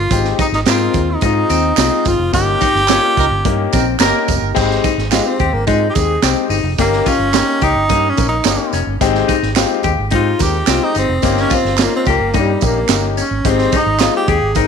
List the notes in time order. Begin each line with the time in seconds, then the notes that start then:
Already playing: F4
0.11 G#1 G#3 C4 D#4 G4, kick, closed hi-hat, tambourine
0.24 snare
0.39 D#4, kick, closed hi-hat, tambourine
0.52 G#1 D#4, snare
0.66 G#2 G#3 C4 D#4 F4 A#4, snare, clap, closed hi-hat, tambourine
0.94 D#2, kick, closed hi-hat, tambourine
1.10 D#4
1.21 G#2 G#3 C4 D#4 F4, kick, closed hi-hat, tambourine
1.25 D#4
1.50 D#2 C4, closed hi-hat, tambourine
1.77 C2 G#3 C4 D#4 F4, snare, clap, closed hi-hat, tambourine
2.05 G1 F4, kick, closed hi-hat, tambourine
2.19 F1
2.33 G1 A#3 C#4 D#4 G4, kick, closed hi-hat, tambourine
2.61 D#4, kick, closed hi-hat, tambourine
2.75 G1, snare
2.88 A#3 C#4 D#4 F4, snare, clap, closed hi-hat, tambourine
3.17 C#2 D#4 G4 A#4, kick, closed hi-hat
3.31 G1
3.45 G2 A#3 C#4 D#4 G4, kick, closed hi-hat
3.72 A#1 C4 D#4 G4 A#4, kick, snare, closed hi-hat, tambourine
3.99 G1 A#3 C#4 D#4 G4 A#4, snare, clap, closed hi-hat, tambourine
4.28 F1, kick, closed hi-hat, tambourine
4.42 G1
4.54 G#1 G#3 C4 D#4 G4, kick, crash, tambourine
4.71 snare
4.84 D#4, kick, closed hi-hat, tambourine
4.98 G#1, snare
5.11 G#3 C4 D#4 F4 G4, snare, clap, closed hi-hat, tambourine
5.27 C4
5.39 D#2 G4, kick, closed hi-hat
5.53 G#1 A#3
5.67 G#2 G#3 C4 D#4 F4, kick, closed hi-hat, tambourine
5.90 G4
5.95 D#2 G#3 C4 D#4 G4 G#4, kick, snare, closed hi-hat, tambourine
6.22 C2 G#3 C4 D#4 G4, snare, clap, closed hi-hat, tambourine
6.50 G1 D#4, open hi-hat, tambourine
6.64 F1
6.78 G1 A#3 C#4 D#4 G4, kick, closed hi-hat, tambourine
6.93 snare
7.06 C#4 F4, kick, closed hi-hat, tambourine
7.19 G1
7.33 A#3 C#4 D#4 G4, snare, clap, closed hi-hat, tambourine
7.61 C#2 D#4 G4, kick, closed hi-hat, tambourine
7.75 G1
7.89 G2 A#3 C#4 D#4 G4, kick, closed hi-hat, tambourine
8.10 C#4
8.17 A#1 A#3 C#4 D#4 A#4, kick, closed hi-hat, tambourine
8.29 D#4
8.44 G1 A#3 C#4 D#4 G4, snare, clap, closed hi-hat, tambourine
8.73 F1 C#4, closed hi-hat, tambourine
8.87 G1
9.01 G#1 G#3 C4 D#4 G4, kick, closed hi-hat, tambourine
9.15 snare
9.28 D#4, kick, closed hi-hat, tambourine
9.43 G#1, snare
9.56 G#3 C4 D#4 F4 G4, snare, clap, closed hi-hat, tambourine
9.83 D#2 G4, kick, closed hi-hat, tambourine
9.98 G#1
10.11 G#2 G#3 C4 D#4 G4, kick, closed hi-hat
10.15 F4
10.39 D#2 G#3 C4 D#4 G4 A#4, kick, snare, closed hi-hat, tambourine
10.67 C2 G#3 C4 D#4 F4 G4, snare, clap, closed hi-hat, tambourine
10.84 D#4
10.95 G1 C4 D#4, closed hi-hat, tambourine
11.09 F1
11.22 G1 A#3 C#4 D#4 G4, kick, closed hi-hat, tambourine
11.37 C#4, snare
11.50 F4, kick, closed hi-hat, tambourine
11.54 C4
11.65 G1, snare
11.78 A#3 C#4 D#4 F4, snare, clap, closed hi-hat, tambourine
11.82 A#3
11.96 C4
12.05 C#2 A#3 G4, kick, closed hi-hat, tambourine
12.20 G1
12.34 G2 A#3 C#4 D#4 G4, kick, closed hi-hat, tambourine
12.38 G3
12.61 A#1 A#3 C#4 D#4 G4, kick, closed hi-hat, tambourine
12.66 A#3
12.89 G1 A#3 C#4 D#4 G4, snare, clap, closed hi-hat, tambourine
13.17 C#4, closed hi-hat, tambourine
13.31 G#1
13.45 G#1 G#3 C4 D#4 G4, kick, closed hi-hat, tambourine
13.50 C4
13.58 snare
13.72 D#4, kick, closed hi-hat, tambourine
13.77 D#4
13.86 G#1
13.99 G#3 C4 D#4 F4 G#4, snare, clap, closed hi-hat, tambourine
14.17 G4
14.28 D#2 G4 G#4, kick, closed hi-hat
14.42 G#1
14.55 G#3 C4 D#4 A#4, kick, closed hi-hat, tambourine